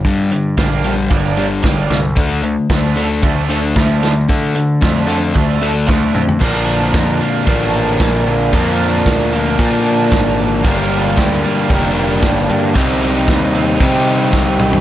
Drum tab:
CC |----------------|----------------|----------------|x---------------|
HH |--x---x---x---x-|--x---x---x---x-|--x---x---x-----|--x-x-x-x-x-x-x-|
SD |----o-------o-o-|----o-------o-o-|----o-------o---|----o-------o---|
T2 |----------------|----------------|--------------o-|----------------|
FT |----------------|----------------|---------------o|----------------|
BD |o---o---o---o---|o---o---o---o---|o---o---o---o---|o---o---o---o---|

CC |----------------|----------------|----------------|
HH |x-x-x-x-x-x-x-x-|x-x-x-x-x-x-x-x-|x-x-x-x-x-x-----|
SD |----o-------o---|----o-------oo--|----o-------o---|
T2 |----------------|----------------|--------------o-|
FT |----------------|----------------|---------------o|
BD |o---o---o---o---|o---o---o---o---|o---o---o---o---|